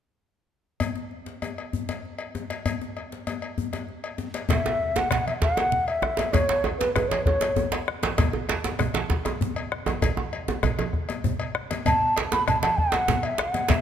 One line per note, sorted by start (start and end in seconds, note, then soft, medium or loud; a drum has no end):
0.80 cowbell soft
0.80 djembe bass medium
0.95 djembe slap soft
0.95 djembe tone soft
1.11 djembe slap soft
1.26 djembe slap soft
1.42 cowbell soft
1.42 djembe tone medium
1.58 cowbell soft
1.73 djembe bass medium
1.89 cowbell soft
1.89 djembe slap soft
1.89 djembe tone soft
2.05 djembe slap soft
2.18 cowbell soft
2.18 djembe slap soft
2.35 djembe slap soft
2.35 djembe tone medium
2.50 cowbell soft
2.50 djembe slap medium
2.66 cowbell soft
2.66 djembe bass medium
2.81 djembe slap soft
2.81 djembe tone soft
2.96 cowbell soft
2.96 djembe slap soft
3.12 djembe slap soft
3.27 cowbell soft
3.27 djembe tone medium
3.42 cowbell soft
3.58 djembe bass medium
3.73 cowbell soft
3.73 djembe slap soft
3.73 djembe tone soft
3.88 djembe slap soft
4.04 cowbell soft
4.04 djembe slap soft
4.18 djembe slap soft
4.18 djembe tone medium
4.34 cowbell soft
4.34 djembe slap medium
4.49 4.98 E5 medium
4.49 bombo rim soft
4.49 bombo low medium
4.49 cowbell medium
4.49 djembe slap medium
4.49 high conga soft
4.49 djembe bass medium
4.49 low conga medium
4.66 djembe slap medium
4.96 5.11 F#5 medium
4.96 djembe slap soft
4.96 djembe slap medium
4.96 djembe tone medium
5.11 5.26 F#5 medium
5.11 bombo rim medium
5.11 cowbell soft
5.11 djembe slap soft
5.11 djembe slap medium
5.11 high conga soft
5.11 djembe bass medium
5.11 low conga medium
5.28 5.34 E5 medium
5.28 cowbell soft
5.28 high conga medium
5.42 5.89 F#5 loud
5.42 bombo low medium
5.42 djembe slap medium
5.42 high conga soft
5.57 cowbell soft
5.57 djembe slap medium
5.57 djembe tone medium
5.57 high conga soft
5.72 high conga soft
5.72 low conga medium
5.88 6.34 E5 medium
5.88 cowbell soft
5.88 djembe slap soft
6.02 bombo rim medium
6.02 djembe tone medium
6.17 cowbell soft
6.17 djembe slap medium
6.19 djembe slap medium
6.19 djembe tone soft
6.33 6.64 C#5 medium
6.33 bombo rim soft
6.33 bombo low medium
6.33 cowbell medium
6.33 djembe tone medium
6.33 high conga soft
6.33 djembe bass medium
6.33 low conga medium
6.49 djembe slap medium
6.64 cowbell soft
6.64 djembe tone loud
6.79 6.93 B4 medium
6.79 djembe slap soft
6.79 djembe slap medium
6.79 djembe tone soft
6.94 7.10 B4 medium
6.94 bombo rim medium
6.94 cowbell soft
6.94 djembe slap soft
6.94 djembe tone medium
6.94 high conga soft
6.94 djembe bass medium
6.94 low conga medium
7.08 7.24 C#5 medium
7.08 cowbell soft
7.08 djembe slap medium
7.08 high conga soft
7.25 7.68 C#5 medium
7.25 bombo low loud
7.25 high conga soft
7.25 djembe tone medium
7.41 cowbell soft
7.41 djembe slap medium
7.41 djembe slap soft
7.41 high conga soft
7.41 djembe tone medium
7.56 djembe tone medium
7.56 high conga soft
7.56 djembe bass medium
7.72 cowbell soft
7.72 djembe slap medium
7.72 djembe slap soft
7.88 bombo rim medium
8.03 cowbell soft
8.03 djembe slap medium
8.03 djembe tone medium
8.03 high conga soft
8.18 bombo rim soft
8.18 bombo low loud
8.18 cowbell medium
8.18 djembe slap medium
8.18 high conga soft
8.18 djembe bass medium
8.18 low conga medium
8.33 djembe tone medium
8.49 cowbell soft
8.49 djembe slap medium
8.64 djembe slap medium
8.64 djembe tone soft
8.79 bombo rim medium
8.79 cowbell soft
8.79 djembe slap soft
8.79 djembe tone medium
8.79 high conga soft
8.79 low conga medium
8.79 djembe bass medium
8.94 cowbell soft
8.94 djembe slap medium
8.94 high conga medium
9.10 bombo low medium
9.10 djembe slap medium
9.10 high conga soft
9.25 cowbell soft
9.25 djembe slap medium
9.25 djembe tone medium
9.25 djembe tone soft
9.25 high conga soft
9.41 high conga soft
9.41 djembe bass medium
9.41 low conga medium
9.56 cowbell soft
9.56 djembe slap soft
9.72 bombo rim medium
9.86 cowbell soft
9.86 djembe slap soft
9.86 djembe tone medium
9.86 high conga medium
10.02 bombo rim soft
10.02 bombo low medium
10.02 cowbell medium
10.02 djembe slap soft
10.02 djembe bass medium
10.02 low conga medium
10.17 bombo rim soft
10.17 djembe slap soft
10.17 djembe tone medium
10.33 cowbell soft
10.33 djembe slap soft
10.48 djembe slap medium
10.48 djembe tone medium
10.48 high conga soft
10.63 bombo rim medium
10.63 cowbell soft
10.63 djembe slap soft
10.63 djembe bass medium
10.63 low conga medium
10.79 bombo rim soft
10.79 cowbell soft
10.79 djembe slap soft
10.79 djembe tone medium
10.79 high conga medium
10.93 bombo rim soft
10.93 bombo low medium
10.93 djembe slap soft
11.09 cowbell soft
11.09 djembe slap soft
11.09 djembe tone soft
11.24 djembe slap soft
11.24 high conga soft
11.24 djembe bass medium
11.24 low conga medium
11.40 bombo rim soft
11.40 cowbell soft
11.40 high conga soft
11.55 bombo rim medium
11.71 cowbell soft
11.71 djembe slap medium
11.71 djembe tone medium
11.71 high conga medium
11.86 12.14 A5 loud
11.86 bombo rim soft
11.86 bombo low medium
11.86 cowbell medium
11.86 high conga soft
11.86 djembe bass medium
11.86 low conga medium
12.16 cowbell soft
12.16 djembe slap medium
12.32 12.46 B5 loud
12.32 djembe slap medium
12.32 djembe tone medium
12.48 12.61 A5 medium
12.48 bombo rim medium
12.48 cowbell medium
12.48 djembe slap soft
12.48 high conga soft
12.48 djembe bass medium
12.48 low conga medium
12.62 12.80 A5 medium
12.62 cowbell medium
12.62 djembe slap medium
12.62 high conga medium
12.78 13.27 F#5 medium
12.78 bombo low medium
12.78 high conga soft
12.92 cowbell soft
12.92 djembe slap medium
12.92 high conga soft
12.94 djembe slap soft
12.94 djembe tone soft
13.08 djembe slap medium
13.08 high conga soft
13.08 low conga medium
13.08 djembe bass medium
13.23 13.42 E5 medium
13.23 cowbell soft
13.23 djembe slap soft
13.38 13.72 F#5 medium
13.38 bombo rim medium
13.38 djembe slap medium
13.54 cowbell soft
13.54 djembe slap medium
13.54 djembe tone medium
13.54 high conga medium
13.69 13.81 E5 medium
13.69 bombo rim soft
13.69 bombo low medium
13.69 cowbell medium
13.69 djembe slap loud
13.69 high conga soft
13.69 low conga medium
13.69 djembe bass medium